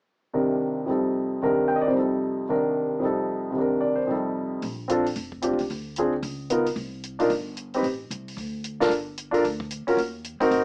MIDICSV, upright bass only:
0, 0, Header, 1, 3, 480
1, 0, Start_track
1, 0, Tempo, 267977
1, 593, Time_signature, 4, 2, 24, 8
1, 19066, End_track
2, 0, Start_track
2, 0, Title_t, "Upright bass"
2, 0, Program_c, 0, 32
2, 8286, Note_on_c, 0, 34, 71
2, 9194, Note_off_c, 0, 34, 0
2, 9242, Note_on_c, 0, 29, 67
2, 9835, Note_off_c, 0, 29, 0
2, 9908, Note_on_c, 0, 34, 56
2, 10027, Note_off_c, 0, 34, 0
2, 10038, Note_on_c, 0, 37, 60
2, 10186, Note_off_c, 0, 37, 0
2, 10218, Note_on_c, 0, 38, 72
2, 11120, Note_off_c, 0, 38, 0
2, 11149, Note_on_c, 0, 37, 77
2, 12064, Note_off_c, 0, 37, 0
2, 12103, Note_on_c, 0, 36, 75
2, 13021, Note_off_c, 0, 36, 0
2, 13072, Note_on_c, 0, 31, 75
2, 13986, Note_off_c, 0, 31, 0
2, 14022, Note_on_c, 0, 33, 68
2, 14474, Note_off_c, 0, 33, 0
2, 14516, Note_on_c, 0, 36, 67
2, 14962, Note_off_c, 0, 36, 0
2, 14986, Note_on_c, 0, 38, 70
2, 15902, Note_off_c, 0, 38, 0
2, 15935, Note_on_c, 0, 31, 73
2, 16857, Note_off_c, 0, 31, 0
2, 16916, Note_on_c, 0, 38, 76
2, 17635, Note_off_c, 0, 38, 0
2, 17854, Note_on_c, 0, 39, 76
2, 18583, Note_off_c, 0, 39, 0
2, 18822, Note_on_c, 0, 32, 73
2, 19066, Note_off_c, 0, 32, 0
2, 19066, End_track
3, 0, Start_track
3, 0, Title_t, "Muted upright bass strokes"
3, 17681, Note_on_c, 9, 29, 35
3, 17860, Note_off_c, 9, 29, 0
3, 18637, Note_on_c, 9, 29, 36
3, 18816, Note_off_c, 9, 29, 0
3, 19066, End_track
0, 0, End_of_file